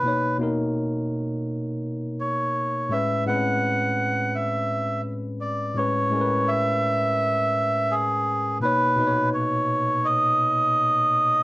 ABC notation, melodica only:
X:1
M:4/4
L:1/8
Q:"Swing 16ths" 1/4=84
K:A
V:1 name="Melodica"
B z4 z c2 | e f3 e2 z d | c2 e4 G2 | B2 c2 ^d4 |]